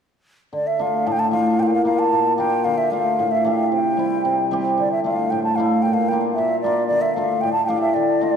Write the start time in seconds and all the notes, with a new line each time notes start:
0.53 D3 D5
0.67 E5
0.79 A3 D4 F4 F5
1.07 A2 A5
1.12 G5
1.19 A5
1.31 A3 D4 F4 F5
1.59 A#2 F5 G5
1.67 G5
1.74 F5
1.85 A#3 D4 F4 F5
1.99 A5
2.13 A#2
2.38 A#3 D4 F4 G5
2.64 D3 F5
2.78 E5
2.91 A3 D4 F4 F5
3.19 A2
3.31 E5
3.45 A3 D4 G4 F5
3.72 C3 G5
3.97 G3 C4 E4
4.25 C3
4.51 G3 C4 G4
4.78 D3 D5
4.92 E5
5.04 A3 D4 F4 F5
5.30 A2 G5
5.43 A5
5.56 A3 D4 F5
5.60 E4
5.82 A#2 G5
5.93 F5
6.09 A#3 D4 G5
6.13 F4
6.21 G5
6.34 A#2 E5
6.61 A#3 D4 D5
6.66 F4
6.87 D3 D5
7.01 E5
7.14 A3 D4 F4 F5
7.41 A2 G5
7.53 A5
7.66 A3 D4 F5 G5
7.70 G4
7.81 E5
7.94 D3 D5
8.21 A3 D4 F4